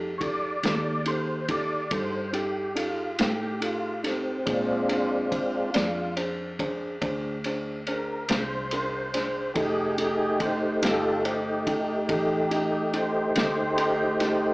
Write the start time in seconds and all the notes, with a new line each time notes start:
Already playing: F2 D#4 G4 A4
0.18 D#4 G4 A4 C#5, kick, ride
0.23 D5
0.63 D#2 D#4 G4 A4, snare, ride
1.06 D#4 G4 A4 C5, ride
1.48 D#4 G4 A4 D5, kick, ride
1.91 G2 D#4 G4 A4 C5, kick, ride
2.33 D#4 G4 A4, ride
2.75 D#4 F4 G4 A4, ride
3.19 A2 D#4 G4 A4, snare, ride
3.60 D#4 F4 G4 A4, ride
4.03 C4 D#4 G4 A4, snare, ride
4.46 A#2 G#3 C4 D4 F4 G#4 C5, kick, ride
4.88 D4 G#4 C5, ride
5.30 D4 G#4 C5, kick, ride
5.73 F2 D4 G#4 D5, snare, ride
6.16 D4 G#4 C5, ride
6.59 D4 G#4 C5, kick, ride
7.01 D2 D4 G#4 C5, kick, ride
7.44 D4 G#4 C5, ride
7.87 D4 G#4 A#4 C5, ride
8.29 C2 D4 G#4 C5, snare, ride
8.71 D4 G#4 A#4, ride
9.14 D4 G#4 C5, snare, ride
9.54 F1 A3 D#4 G4 G#4 A4, kick, ride
9.97 D#4 G4 A4, ride
10.39 D#4 G4 A4 C5, kick, ride
10.82 G1 D#4 F4 G4 A4, snare, ride
11.25 D#4 G4 C5, ride
11.67 D#4 G4 A4, kick, ride
12.09 A1 D#4 G4 A4, kick, ride
12.50 D#4 G4 A4, ride
12.92 D#4 G4 A4 C5, ride
13.35 D2 D#4 G4 A4 C5, snare, ride
13.77 D#4 G4 A4, ride
14.20 D#4 G4 A4, snare, ride